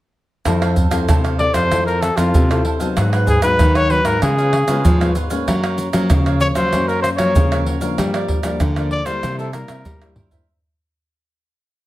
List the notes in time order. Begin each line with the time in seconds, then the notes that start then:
0.45 F2 F3 C4 E4 A4 C5 F5, pandeiro, tamborim, shaker, surdo
0.62 A4 C5 F5, pandeiro, tamborim, shaker
0.76 pandeiro, shaker, surdo
0.91 F2 C4 E4 A4 C5 F5, pandeiro, tamborim, shaker
1.08 C3 E4 A4 C5 F5, pandeiro, tamborim, shaker, surdo
1.24 A4 C5 F5, pandeiro, tamborim, shaker
1.39 C4 E4 A4 D5, muted cavaquinho stroke, pandeiro
1.54 F2 A4 C5 F5, pandeiro, tamborim, shaker
1.71 F3 C4 E4 A4 C5 F5, pandeiro, tamborim, shaker, surdo
1.86 A4 A#4 C5 F5, pandeiro, shaker
2.01 A4, muted cavaquinho stroke, pandeiro, tamborim, shaker
2.17 F2 C4 E4 F4 A4 C5 F5, pandeiro, tamborim, shaker
2.34 C3, pandeiro, shaker, surdo
2.49 C4 E4 A4 C5 F5, pandeiro, tamborim, shaker
2.65 E4 A4 C5 F5, pandeiro
2.79 F#3 B3 D#4 A4 C5 F5, pandeiro, shaker
2.97 G#2 F#4 G#4 B4 F#5, pandeiro, tamborim, shaker, surdo
3.13 G#4 B4 F#5, pandeiro, tamborim, shaker
3.27 G#4, pandeiro, shaker, surdo
3.42 G#2 F#3 B3 D#4 G#4 B4 F#5, pandeiro, tamborim, shaker
3.59 D#3 F#4 G#4 B4 F#5, pandeiro, tamborim, shaker, surdo
3.75 G#4 B4 C#5 F#5, pandeiro, tamborim, shaker
3.90 F#3 B3 D#4 B4, muted cavaquinho stroke, pandeiro
4.05 G#2 G#4 A#4 B4 F#5, pandeiro, tamborim, shaker
4.22 C#3 G#3 B3 F4 G#4 B4 C#5 F5, pandeiro, tamborim, shaker, surdo
4.38 B4 C#5 F5, pandeiro, shaker
4.53 muted cavaquinho stroke, pandeiro, tamborim
4.68 C#3 G#3 B3 F4 B4 C#5 F5, pandeiro, tamborim, shaker
4.85 G#2 F3, pandeiro, shaker, surdo
5.00 G#3 B3 F4 B4 C#5 F5, pandeiro, tamborim, shaker
5.15 F4 B4 C#5 F5, pandeiro, shaker
5.30 A#3 C#4 B4 C#5 F5, pandeiro, shaker
5.48 F#2 F#3 F#4 A#4 C#5 F5, pandeiro, tamborim, shaker, surdo
5.63 A#4 C#5 F5, pandeiro, tamborim, shaker
5.78 pandeiro, shaker
5.93 F3 F#3 A#3 C#4 A#4 C#5 F5, pandeiro, tamborim, shaker
6.10 C#3 F#4 A#4 C#5 F5, pandeiro, tamborim, shaker, surdo
6.26 A#4 C#5 F5, pandeiro, tamborim, shaker
6.40 F3 A#3 C#4 C#5, muted cavaquinho stroke, pandeiro, shaker
6.55 F#3 A#4 C5 C#5 F5, pandeiro, tamborim, shaker
6.72 F#2 A#3 C#4 F#4 A#4 C#5 F5, pandeiro, tamborim, shaker, surdo
6.88 A#4 C#5 F5, pandeiro, shaker
7.02 C5, muted cavaquinho stroke, pandeiro, tamborim, shaker
7.17 F3 F#3 A#3 C#4 A#4 C#5 F5, pandeiro, tamborim, shaker
7.35 C#3, pandeiro, shaker, surdo
7.51 F3 A#3 C#4 A#4 C#5 F5, pandeiro, tamborim, shaker
7.66 F#4 A#4 C#5 F5, pandeiro
7.81 F3 A#3 D4 A#4 C#5 F5, pandeiro, shaker
7.98 G2 G3 G4 A#4 D5 F5, pandeiro, tamborim, shaker, surdo
8.14 A#4 D5 F5, pandeiro, tamborim, shaker
8.28 pandeiro, surdo
8.43 F3 G3 A#3 D4 A#4 D5 F5, pandeiro, tamborim, shaker
8.60 D3 G4 A#4 D5 F5, pandeiro, tamborim, shaker, surdo
8.76 F3 A#3 D4 A#4 D5 F5, pandeiro, tamborim, shaker
8.91 D5, muted cavaquinho stroke, pandeiro
9.06 G3 A#3 E4 A#4 C5 D5 F5, pandeiro, tamborim, shaker
9.23 C3 E4 A#4 C5 E5, pandeiro, tamborim, shaker, surdo
9.39 A4 A#4 C5 E5, pandeiro, shaker
9.53 G3 A#3 E4 A#4, pandeiro, tamborim, shaker
9.68 C3 A#4 C5 E5, pandeiro, tamborim, shaker
9.85 G2 G3, pandeiro, shaker, surdo
10.01 G3 A#3 E4 A#4 C5 E5, pandeiro, tamborim, shaker
10.16 E4 A#4 C5 E5, surdo, pandeiro
10.31 G3 A#3 E4 A#4 C5 E5, pandeiro, shaker, surdo